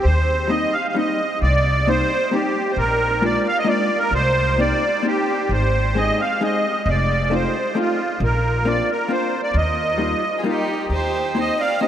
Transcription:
0.03 D#2 C5
0.48 G3 A#3 C4 D#4 D#5
0.73 F5
0.89 F5
0.95 G3 A#3 C4 D#4 D#5
1.42 C2 D5
1.87 G3 A#3 C4 D#4 C5
2.31 G3 A#3 C4 D#4 G4
2.71 C5
2.76 A#1 A#4
3.22 G#3 A#3 D4 F4 D5
3.48 F5
3.59 D#5
3.64 G#3 A#3 D4 F4 D5
3.98 A#4
4.11 C2 C5
4.58 A#3 C4 D#4 G4 D5
5.03 A#3 C4 D#4 G4
5.49 G#1 C5
5.95 G#3 C4 D#4 G#4 D#5
6.21 F5
6.41 G#3 C4 D#4 G#4 D#5
6.86 F1 D5
7.30 A3 C4 D#4 F4 C5
7.75 A3 C4 D#4 F4
7.79 F4
8.20 A#1 A#4
8.65 A#3 C4 D4 F4 D5
8.91 A#4
9.08 A#3 C4 D4 F4 C5
9.43 D5
9.54 D#2 D#5
9.98 G3 A#3 D#4 F4
10.38 F4 G#4
10.44 G3 A#3 D#4 F4 G4
10.48 D#4
10.89 D#2 C5
10.94 G4
11.35 A#3 C4 D#4 G4
11.40 C5 D#5
11.60 D5 F5
11.81 A#3 C4 D#4 G4 C5 D#5

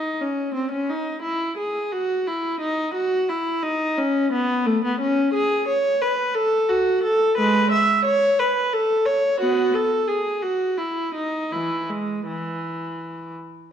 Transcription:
Already playing: D#4
0.21 C#4
0.55 C4
0.72 C#4
0.90 D#4
1.22 E4
1.58 G#4
1.92 F#4
2.27 E4
2.61 D#4
2.95 F#4
3.29 E4
3.63 D#4
3.98 C#4
4.32 B3
4.66 A3
4.85 B3
5.01 C#4
5.34 G#4
5.68 C#5
6.01 B4
6.35 A4
6.69 F#4
7.04 A4
7.38 G#3 B4
7.72 E5
8.05 C#5
8.39 B4
8.74 A4
9.06 C#5
9.40 B3 F#4
9.75 A4
10.08 G#4
10.42 F#4
10.78 E4
11.15 D#4
11.52 E3 E4
11.89 G#3
12.26 E3

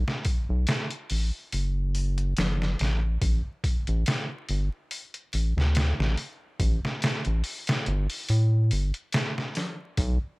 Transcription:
0.08 snare
0.25 kick, open hi-hat
0.49 B1
0.67 snare, open hi-hat
0.90 closed hi-hat
1.10 A1, open hi-hat
1.52 F#1, open hi-hat
1.95 open hi-hat
2.18 closed hi-hat
2.37 F#1, snare, open hi-hat
2.62 snare
2.79 A1, snare, open hi-hat
3.21 A1, kick, open hi-hat
3.64 kick, open hi-hat
3.87 A1, closed hi-hat
4.06 snare, open hi-hat
4.49 G1, open hi-hat
4.91 open hi-hat
5.14 closed hi-hat
5.33 A1, open hi-hat
5.57 D2, snare
5.75 snare, open hi-hat
5.99 A1, snare
6.17 open hi-hat
6.60 A1, kick, open hi-hat
6.85 snare
7.02 snare, open hi-hat
7.25 A1, closed hi-hat
7.44 open hi-hat
7.67 snare, open hi-hat
7.86 G1, closed hi-hat
8.10 open hi-hat
8.29 A2, open hi-hat
8.71 G1, open hi-hat
8.94 closed hi-hat
9.13 snare, open hi-hat
9.38 snare
9.55 snare, open hi-hat
9.97 B1, kick, open hi-hat

